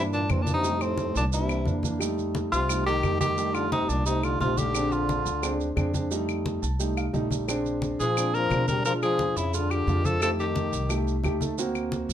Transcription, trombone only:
0.12 A#2
0.31 G2
0.42 A#2
0.53 C3
0.82 A2
1.16 A#2
1.33 C3
2.52 C3
2.87 D#3
3.21 D#3
3.55 D3
3.72 C3
3.88 A#2
4.06 C3
4.23 D3
4.41 C3
4.57 D3
4.93 D3
8.00 F3
8.34 F3
8.69 G3
8.86 F3
9.03 F3
9.37 C#3
9.54 D3
9.71 D3
10.05 F3
10.23 F3
10.40 D#3

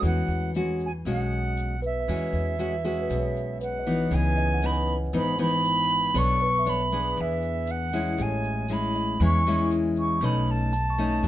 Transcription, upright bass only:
0.03 E2
0.28 E2
1.05 B1
2.08 E2
2.33 E2
3.10 B1
4.11 C#2
5.13 G#1
6.14 B1
7.17 E2
8.19 A1
9.20 E2
10.21 B1
11.23 F#2

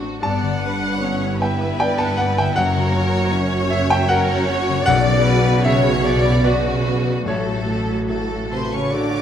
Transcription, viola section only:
0.22 B3 D4
0.63 D4
1.01 C#4 E4
1.42 B3
2.58 A#3 F#4
3.33 C#4
4.10 C#4 F#4
4.87 C#3 F#4
6.44 C#3 F#4
7.27 A3 F#4

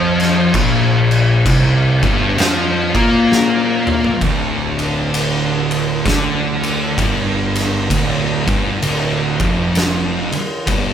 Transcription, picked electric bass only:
Already playing: F2
0.54 A#1
1.46 C2
2.02 G1
2.37 F2
2.94 A#2
4.21 D1
6.05 D2
6.98 G1
7.90 D1
8.48 G1
8.83 D1
9.40 F1
10.33 muted picked electric bass stroke
10.67 G1

